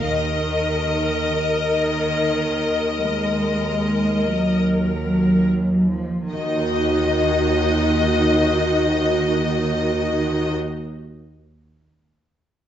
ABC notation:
X:1
M:4/4
L:1/16
Q:1/4=37
K:Ebm
V:1 name="Violin section"
e12 z4 | e16 |]
V:2 name="Violin section"
e12 z4 | e16 |]
V:3 name="Viola section"
B12- B2 z2 | [EG]16 |]
V:4 name="Cello section" clef=bass
E,4 E,4 A,3 G,4 F, | E,16 |]
V:5 name="Double bass section" clef=bass
E,,16 | E,,16 |]